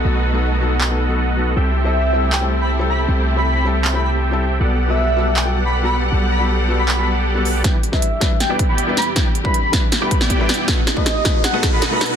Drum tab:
HH |--------------------------------|--------------------------------|--------------------------------|--------------------------------|
CP |----------------x---------------|----------------x---------------|----------------x---------------|----------------x---------------|
SD |--------------------------------|--------------------------------|--------------------------------|--------------------------------|
BD |--------------------------------|--------------------------------|--------------------------------|--------------------------------|

HH |----------------------------o---|x---x---x---x---x---x---x---xx--|x---x---x---x---x---x---x---xx--|x---x---x---x---x---x---x---xx--|
CP |----------------x---------------|--------------------------------|--------------------------------|--------------------------------|
SD |--------------------------------|o-----o-----o---o-----------o---|o-----------o---o-----o-----o---|o---o---o---o---o---o---o---o---|
BD |--------------------------------|o-----o-----o-------o-----------|o-----o-----o-------o---o-------|o-----o-----o-------o-----------|